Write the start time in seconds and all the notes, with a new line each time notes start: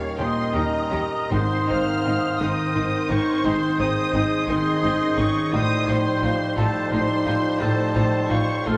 Already playing: A#2 D#3 G3 C#4 D#4 G4 A#4 C#5 F5 C#6
0.18 D#2 A#2 D#3 C#4 G4 C5 D#5 C6 D#6
0.52 D#2 D#3 C#4 D#4 G4 A#4 A#5
0.90 D#2 D#3 C#4 G4
1.31 G#1 G#2 D#3 C4 D#4 C5 C6 D#6
1.68 G#1 G#2 C4 D#4 C5 F5 F6
2.06 G#1 G#2 C4 D#4
2.40 G#1 G#2 D#3 C4 D#4 A#4 C5 D#5 D#6 G6
2.75 G#1 G#2 C4 D#4
3.09 G#1 G#2 D#3 C4 D#4 C#5 C#6
3.44 G#1 G#2 D#3 G#3 C4 D#4 G#4 C5 C6
3.78 G#1 G#2 C4 D#4 C5 D#5 D#6
4.13 G#1 G#2 C4 D#4
4.48 G#1 G#2 D#3 C4 D#4 C5 D#5 C6
4.83 G#1 G#2 C4 D#4
5.00 C#4
5.17 G#1 G#2 D#3 C4 D#4 C#5 C#6
5.52 A1 A2 F3 G3 D#4 F4 C5 D#5 D#6
5.87 A1 A2 D#4 F4 C5 C6
6.22 A1 A2 D#4 F4
6.57 A1 A2 F3 A3 D#4 F4 A4 C5 A5
6.91 A1 A2 D#4 F4 C5 C6
7.25 A1 A2 D#4 F4
7.59 A1 A2 F3 D#4 F4 A4 C5 A5
7.94 A1 A2 D#4 F4 C5
8.30 A1 A2 D#4 F4 C#5 C#6
8.66 A1 A2 F3 A3 D#4 F4 A4 C5 C6 F6